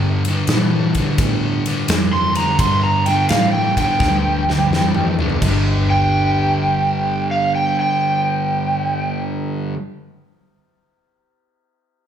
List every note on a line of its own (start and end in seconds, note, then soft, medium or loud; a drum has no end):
0.00 0.22 G2 medium
0.00 0.47 G2 medium
0.00 0.22 D3 medium
0.25 0.48 G2 medium
0.25 0.48 D3 medium
0.25 ride medium
0.47 0.92 G2 medium
0.47 1.17 A#2 medium
0.47 0.92 E3 medium
0.47 snare loud
0.47 ride medium
0.95 1.18 G2 medium
0.95 1.18 D3 medium
0.95 kick medium
0.95 ride medium
1.18 1.62 G2 medium
1.18 1.87 A2 medium
1.18 1.63 D3 medium
1.18 kick loud
1.18 ride medium
1.66 1.88 G2 medium
1.66 1.88 D3 medium
1.66 ride medium
1.88 2.58 F2 medium
1.88 2.32 G2 medium
1.88 2.33 E3 loud
1.88 snare loud
1.88 ride loud
2.13 2.36 C6 loud
2.35 2.58 G2 medium
2.35 2.59 D3 medium
2.35 2.59 A#5 medium
2.35 ride medium
2.59 3.28 G2 medium
2.59 3.03 G2 medium
2.59 3.03 D3 medium
2.59 2.83 C6 medium
2.59 kick loud
2.59 ride medium
2.84 3.06 A#5 medium
3.06 3.29 G2 medium
3.06 3.29 D3 medium
3.06 3.29 G5 medium
3.06 ride medium
3.29 3.73 G2 medium
3.29 3.99 A2 medium
3.29 3.73 E3 medium
3.29 3.52 F5 medium
3.29 snare loud
3.29 ride medium
3.52 3.76 G5 medium
3.77 3.98 G2 medium
3.77 3.99 D3 medium
3.77 5.14 G5 medium
3.77 kick medium
3.77 ride medium
4.00 4.69 D2 medium
4.00 4.43 G2 medium
4.00 4.43 D3 medium
4.00 kick medium
4.00 snare medium
4.49 4.69 G2 medium
4.49 4.70 D3 medium
4.49 snare medium
4.71 5.39 F2 medium
4.71 5.14 G2 medium
4.71 5.15 E3 loud
4.71 snare medium
4.95 mid tom medium
5.19 5.40 G2 medium
5.19 5.40 D3 medium
5.19 floor tom medium
5.30 floor tom medium
5.42 9.70 G1 medium
5.42 9.74 G2 medium
5.42 9.75 D3 medium
5.42 kick loud
5.42 crash medium
5.46 9.76 G3 loud
5.90 7.26 G5 loud
7.31 7.53 F5 medium
7.55 7.77 G5 medium
7.79 9.25 G5 medium